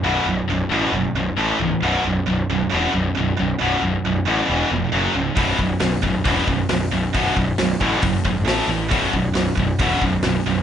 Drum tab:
HH |--------|--------|--------|o-o-o-o-|
SD |--------|--------|--------|--o---o-|
BD |--------|--------|--------|oo-ooo--|

HH |o-o-o-o-|o-o-o-o-|
SD |--o---oo|--o---o-|
BD |oo-ooo--|oo-ooo--|